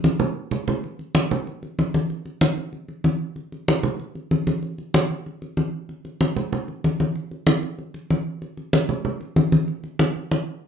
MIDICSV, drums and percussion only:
0, 0, Header, 1, 2, 480
1, 0, Start_track
1, 0, Tempo, 315956
1, 1265, Time_signature, 4, 2, 24, 8
1, 16220, End_track
2, 0, Start_track
2, 0, Title_t, "Drums"
2, 62, Note_on_c, 9, 63, 110
2, 214, Note_off_c, 9, 63, 0
2, 298, Note_on_c, 9, 64, 91
2, 450, Note_off_c, 9, 64, 0
2, 780, Note_on_c, 9, 64, 75
2, 932, Note_off_c, 9, 64, 0
2, 1029, Note_on_c, 9, 64, 96
2, 1181, Note_off_c, 9, 64, 0
2, 1271, Note_on_c, 9, 63, 37
2, 1423, Note_off_c, 9, 63, 0
2, 1506, Note_on_c, 9, 63, 34
2, 1658, Note_off_c, 9, 63, 0
2, 1743, Note_on_c, 9, 63, 101
2, 1895, Note_off_c, 9, 63, 0
2, 1995, Note_on_c, 9, 63, 34
2, 1995, Note_on_c, 9, 64, 83
2, 2146, Note_off_c, 9, 63, 0
2, 2146, Note_off_c, 9, 64, 0
2, 2234, Note_on_c, 9, 63, 36
2, 2386, Note_off_c, 9, 63, 0
2, 2473, Note_on_c, 9, 63, 36
2, 2625, Note_off_c, 9, 63, 0
2, 2715, Note_on_c, 9, 63, 86
2, 2867, Note_off_c, 9, 63, 0
2, 2953, Note_on_c, 9, 63, 88
2, 3105, Note_off_c, 9, 63, 0
2, 3192, Note_on_c, 9, 63, 37
2, 3344, Note_off_c, 9, 63, 0
2, 3426, Note_on_c, 9, 63, 37
2, 3578, Note_off_c, 9, 63, 0
2, 3665, Note_on_c, 9, 63, 108
2, 3817, Note_off_c, 9, 63, 0
2, 3913, Note_on_c, 9, 63, 32
2, 4065, Note_off_c, 9, 63, 0
2, 4144, Note_on_c, 9, 63, 32
2, 4296, Note_off_c, 9, 63, 0
2, 4383, Note_on_c, 9, 63, 35
2, 4535, Note_off_c, 9, 63, 0
2, 4622, Note_on_c, 9, 63, 94
2, 4774, Note_off_c, 9, 63, 0
2, 5102, Note_on_c, 9, 63, 41
2, 5254, Note_off_c, 9, 63, 0
2, 5352, Note_on_c, 9, 63, 36
2, 5504, Note_off_c, 9, 63, 0
2, 5595, Note_on_c, 9, 63, 104
2, 5747, Note_off_c, 9, 63, 0
2, 5824, Note_on_c, 9, 63, 35
2, 5824, Note_on_c, 9, 64, 88
2, 5976, Note_off_c, 9, 63, 0
2, 5976, Note_off_c, 9, 64, 0
2, 6068, Note_on_c, 9, 63, 34
2, 6219, Note_off_c, 9, 63, 0
2, 6310, Note_on_c, 9, 63, 32
2, 6462, Note_off_c, 9, 63, 0
2, 6550, Note_on_c, 9, 63, 83
2, 6702, Note_off_c, 9, 63, 0
2, 6791, Note_on_c, 9, 63, 85
2, 6943, Note_off_c, 9, 63, 0
2, 7029, Note_on_c, 9, 63, 38
2, 7181, Note_off_c, 9, 63, 0
2, 7268, Note_on_c, 9, 63, 37
2, 7419, Note_off_c, 9, 63, 0
2, 7509, Note_on_c, 9, 63, 106
2, 7661, Note_off_c, 9, 63, 0
2, 7752, Note_on_c, 9, 63, 34
2, 7904, Note_off_c, 9, 63, 0
2, 7996, Note_on_c, 9, 63, 33
2, 8148, Note_off_c, 9, 63, 0
2, 8233, Note_on_c, 9, 63, 36
2, 8385, Note_off_c, 9, 63, 0
2, 8464, Note_on_c, 9, 63, 87
2, 8616, Note_off_c, 9, 63, 0
2, 8948, Note_on_c, 9, 63, 39
2, 9100, Note_off_c, 9, 63, 0
2, 9189, Note_on_c, 9, 63, 36
2, 9341, Note_off_c, 9, 63, 0
2, 9429, Note_on_c, 9, 63, 93
2, 9581, Note_off_c, 9, 63, 0
2, 9670, Note_on_c, 9, 63, 36
2, 9670, Note_on_c, 9, 64, 76
2, 9821, Note_off_c, 9, 63, 0
2, 9821, Note_off_c, 9, 64, 0
2, 9913, Note_on_c, 9, 63, 35
2, 9913, Note_on_c, 9, 64, 75
2, 10065, Note_off_c, 9, 63, 0
2, 10065, Note_off_c, 9, 64, 0
2, 10151, Note_on_c, 9, 63, 34
2, 10303, Note_off_c, 9, 63, 0
2, 10396, Note_on_c, 9, 63, 91
2, 10548, Note_off_c, 9, 63, 0
2, 10636, Note_on_c, 9, 63, 85
2, 10788, Note_off_c, 9, 63, 0
2, 10870, Note_on_c, 9, 63, 40
2, 11022, Note_off_c, 9, 63, 0
2, 11112, Note_on_c, 9, 63, 33
2, 11263, Note_off_c, 9, 63, 0
2, 11342, Note_on_c, 9, 63, 106
2, 11494, Note_off_c, 9, 63, 0
2, 11589, Note_on_c, 9, 63, 38
2, 11741, Note_off_c, 9, 63, 0
2, 11828, Note_on_c, 9, 63, 37
2, 11980, Note_off_c, 9, 63, 0
2, 12067, Note_on_c, 9, 63, 37
2, 12218, Note_off_c, 9, 63, 0
2, 12313, Note_on_c, 9, 63, 89
2, 12465, Note_off_c, 9, 63, 0
2, 12789, Note_on_c, 9, 63, 39
2, 12941, Note_off_c, 9, 63, 0
2, 13025, Note_on_c, 9, 63, 38
2, 13177, Note_off_c, 9, 63, 0
2, 13266, Note_on_c, 9, 63, 105
2, 13418, Note_off_c, 9, 63, 0
2, 13505, Note_on_c, 9, 63, 31
2, 13505, Note_on_c, 9, 64, 77
2, 13657, Note_off_c, 9, 63, 0
2, 13657, Note_off_c, 9, 64, 0
2, 13745, Note_on_c, 9, 63, 34
2, 13745, Note_on_c, 9, 64, 70
2, 13897, Note_off_c, 9, 63, 0
2, 13897, Note_off_c, 9, 64, 0
2, 13985, Note_on_c, 9, 63, 33
2, 14137, Note_off_c, 9, 63, 0
2, 14223, Note_on_c, 9, 63, 99
2, 14375, Note_off_c, 9, 63, 0
2, 14467, Note_on_c, 9, 63, 90
2, 14619, Note_off_c, 9, 63, 0
2, 14702, Note_on_c, 9, 63, 37
2, 14854, Note_off_c, 9, 63, 0
2, 14944, Note_on_c, 9, 63, 37
2, 15096, Note_off_c, 9, 63, 0
2, 15182, Note_on_c, 9, 63, 101
2, 15334, Note_off_c, 9, 63, 0
2, 15431, Note_on_c, 9, 63, 32
2, 15583, Note_off_c, 9, 63, 0
2, 15670, Note_on_c, 9, 63, 81
2, 15822, Note_off_c, 9, 63, 0
2, 16220, End_track
0, 0, End_of_file